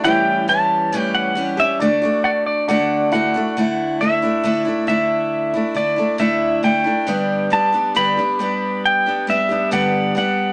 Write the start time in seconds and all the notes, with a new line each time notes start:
0.04 A2 E3 G3 C#4 E4 G4 G5
0.48 E3 G3 C#4 G4 A5
0.92 A2 E3 G3 C#4 G4
1.00 G5
1.15 F#5
1.35 E3 G3 C#4 G4
1.57 G3 C#4 G4 E5
1.79 D3 A3 D4 F#4 D5
2.02 A3 D4 F#4
2.24 D5 F#5
2.46 D5
2.68 D3 A3 D4 F#4 F#5
3.12 D3 A3 D4 E4 F#4 F#5
3.34 A3 D4 F#4
3.57 D3 A3 D4 E4
4.01 D3 A3 D4 E4 E5
4.22 A3 D4 E4
4.43 D3 A3 D4 E4
4.65 A3 D4 E4
4.87 D3 A3 D4 E4 E5
5.54 A3 D4 E4
5.74 D3 A3 D4 E4 D5
5.96 A3 D4 E4
6.18 D3 A3 D4 E4 E5
6.63 D3 A3 D4 E4 G5
6.84 A3 D4 E4
7.07 G2 D3 G3 B3 D4 G4
7.50 G3 B3 D4 G4 A5
7.72 G3 B3 D4 G4
7.95 G2 D3 G3 B3 D4 G4 B5
8.17 G3 B3 D4 G4
8.39 G3 B3 D4 G4
8.86 G5
9.06 G3 B3 D4 G4
9.27 G3 B3 D4 G4 E5
9.49 G3 B3 D4 G4
9.71 G2 D3 G3 B3 D4 G4 F#5
10.15 G3 B3 D4 G4 F#5